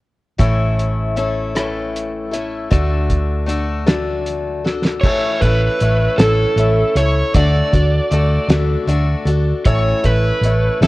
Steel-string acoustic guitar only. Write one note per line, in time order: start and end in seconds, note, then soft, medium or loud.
0.39 1.16 A2 medium
0.39 1.17 E3 medium
0.39 1.16 A3 medium
0.39 1.16 C#4 medium
0.39 1.16 E4 medium
0.39 1.18 A4 medium
1.16 1.55 A3 medium
1.16 1.54 C#4 soft
1.16 1.54 E4 medium
1.16 1.54 A4 medium
1.55 2.33 A2 soft
1.55 2.33 E3 medium
1.55 2.34 A3 medium
1.55 2.32 C#4 medium
1.55 2.31 E4 soft
1.55 2.31 A4 medium
2.31 2.69 A3 soft
2.31 2.71 C#4 soft
2.31 2.71 E4 soft
2.31 2.71 A4 soft
2.70 3.48 D3 medium
2.70 3.45 A3 medium
2.70 3.46 D4 medium
2.70 3.47 F#4 medium
2.70 3.48 A4 medium
3.46 3.86 A3 medium
3.46 3.86 D4 medium
3.46 3.86 F#4 medium
3.46 3.85 A4 medium
3.87 4.65 D3 soft
3.87 4.65 A3 medium
3.87 4.64 D4 medium
3.87 4.64 F#4 medium
3.87 4.63 A4 medium
4.64 5.04 D4 soft
4.64 5.03 F#4 soft
4.64 5.03 A4 soft
5.04 5.42 A2 medium
5.04 5.42 E3 medium
5.04 5.43 A3 medium
5.04 5.43 C#4 medium
5.04 5.42 E4 medium
5.04 5.41 A4 medium
5.42 5.80 A3 soft
5.42 5.81 C#4 soft
5.42 5.81 E4 soft
5.42 5.81 A4 soft
5.81 6.19 A3 medium
5.81 6.19 C#4 medium
5.81 6.19 E4 medium
5.81 6.18 A4 medium
6.19 6.59 A2 soft
6.19 6.58 E3 soft
6.19 6.56 A3 soft
6.19 6.57 C#4 soft
6.19 6.58 E4 medium
6.19 6.58 A4 medium
6.57 6.96 A3 medium
6.57 6.97 C#4 medium
6.57 6.96 E4 medium
6.57 6.95 A4 medium
6.97 7.34 A3 soft
6.97 7.35 C#4 soft
6.97 7.35 E4 soft
6.97 7.35 A4 soft
7.35 7.74 D3 medium
7.35 7.74 A3 medium
7.35 7.74 D4 medium
7.35 7.72 F#4 medium
7.35 7.71 A4 medium
7.72 8.11 D4 soft
7.72 8.12 F#4 soft
7.72 8.12 A4 soft
8.11 8.49 A3 medium
8.11 8.49 D4 medium
8.11 8.48 F#4 medium
8.11 8.48 A4 medium
8.49 8.89 D3 medium
8.49 8.86 A3 medium
8.49 8.87 D4 medium
8.49 8.88 F#4 medium
8.49 8.88 A4 medium
8.87 9.27 A3 medium
8.87 9.27 D4 medium
8.87 9.26 F#4 medium
8.87 9.24 A4 medium
9.25 9.66 D4 soft
9.25 9.66 F#4 soft
9.25 9.65 A4 soft
9.65 10.04 A2 medium
9.65 10.05 E3 medium
9.65 10.04 A3 medium
9.65 10.04 C#4 medium
9.65 10.04 E4 medium
9.65 10.03 A4 medium
10.04 10.43 A3 soft
10.04 10.43 C#4 soft
10.04 10.44 E4 soft
10.04 10.43 A4 soft
10.44 10.81 A3 medium
10.44 10.81 C#4 medium
10.44 10.81 E4 medium
10.44 10.81 A4 medium
10.82 10.87 A2 soft
10.82 10.87 E3 medium
10.82 10.87 A3 medium
10.82 10.87 C#4 medium
10.82 10.87 E4 medium
10.82 10.87 A4 medium